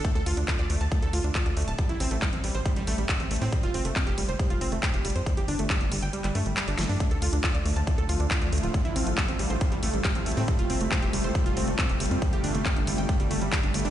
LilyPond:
<<
  \new Staff \with { instrumentName = "Synth pluck" } { \time 4/4 \key a \minor \tempo 4 = 138 a16 a'16 f'16 d'16 f'16 d''16 a16 a''16 a16 a'16 f'16 d'16 f'16 d''16 a16 a''16 | g16 e'16 c'16 a16 g16 c'16 g16 c''16 g16 g16 a16 g16 g16 c'16 a16 c'16 | g16 f'16 c'16 a16 c'16 g'16 g16 c''16 g16 f'16 c'16 a16 c'16 g'16 g16 c''16 | g16 g'16 d'16 a16 g16 d'16 g16 g''16 g16 g16 a16 g16 g16 d'16 a16 d'16 |
a16 a'16 f'16 d'16 f'16 d''16 a16 a''16 a16 a'16 f'16 d'16 f'16 d''16 a16 f'16 | g16 e'16 c'16 a16 g16 c'16 g16 c''16 g16 g16 a16 g16 g16 c'16 a16 c'16 | g16 f'16 c'16 a16 c'16 g'16 g16 c''16 g16 f'16 c'16 a16 c'16 g'16 g16 c'16 | g16 g'16 d'16 a16 g16 d'16 g16 g''16 g16 g16 a16 g16 g16 d'16 a16 d'16 | }
  \new Staff \with { instrumentName = "Analog synth bass" } { \clef bass \time 4/4 \key a \minor r16 d,16 d,16 d,16 r16 d,16 d,16 d,16 r16 d,16 d,16 d,16 r16 d,16 d,16 d,,16 | r16 a,,16 a,,16 a,,16 r16 a,,16 a,,16 a,,16 r16 a,,16 a,,16 a,,16 r16 a,,16 a,,16 a,16 | r16 f,,16 f,,16 f,,16 r16 f,,16 f,,16 f,,16 r16 f,,16 f,,16 f,,16 r16 f,,16 f,,16 f,16 | r16 g,,16 g,,16 g,,16 r16 g,,16 g,,16 g,,16 r16 g,,16 g,16 g,,16 r16 g,,16 g,,16 g,16 |
r16 d,16 d,16 d,16 r16 d,16 d,16 d,16 r16 d,16 d,16 d,16 r16 d,16 d,16 d,,16 | r16 a,,16 a,,16 a,,16 r16 a,,16 a,,16 a,,16 r16 a,,16 a,,16 a,,16 r16 a,,16 a,,16 a,16 | r16 f,,16 f,,16 f,,16 r16 f,,16 f,,16 f,,16 r16 f,,16 f,,16 f,,16 r16 f,,16 f,,16 f,16 | r16 g,,16 g,,16 g,,16 r16 g,,16 g,,16 g,,16 r16 g,,16 g,,16 g,,16 r16 g,,16 g,,16 g,,16 | }
  \new DrumStaff \with { instrumentName = "Drums" } \drummode { \time 4/4 <hh bd>16 hh16 hho16 hh16 <hc hh bd>16 hh16 hho16 hh16 <hh bd>16 hh16 hho16 hh16 <hc hh bd>16 hh16 hho32 hh32 hh16 | <hh bd>16 hh16 hho16 hh16 <hc hh bd>16 hh16 hho16 hh16 <hh bd>16 hh16 hho16 hh16 <hc hh bd>16 hh16 hho32 hh32 hho16 | <hh bd>16 hh16 hho16 hh16 <hc hh bd>16 hh16 hho16 hh16 <hh bd>16 hh16 hho16 hh16 <hc hh bd>16 hh16 hho32 hh32 hh16 | <hh bd>16 hh16 hho16 hh16 <hc hh bd>16 hh16 hho16 hh16 hh16 <hc hh>16 hho16 hh16 <hc hh>16 hh16 <hho sn>32 hh32 hho16 |
<hh bd>16 hh16 hho16 hh16 <hc hh bd>16 hh16 hho16 hh16 <hh bd>16 hh16 hho16 hh16 <hc hh bd>16 hh16 hho32 hh32 hh16 | <hh bd>16 hh16 hho16 hh16 <hc hh bd>16 hh16 hho16 hh16 <hh bd>16 hh16 hho16 hh16 <hc hh bd>16 hh16 hho32 hh32 hho16 | <hh bd>16 hh16 hho16 hh16 <hc bd>16 hh16 hho16 hh16 <hh bd>16 hh16 hho16 hh16 <hc hh bd>16 hh16 hho32 hh32 hh16 | <hh bd>16 hh16 hho16 hh16 <hc hh bd>16 hh16 hho16 hh16 <hh bd>16 hh16 hho16 hh16 <hc hh bd>16 hh16 hho32 hh32 hho16 | }
>>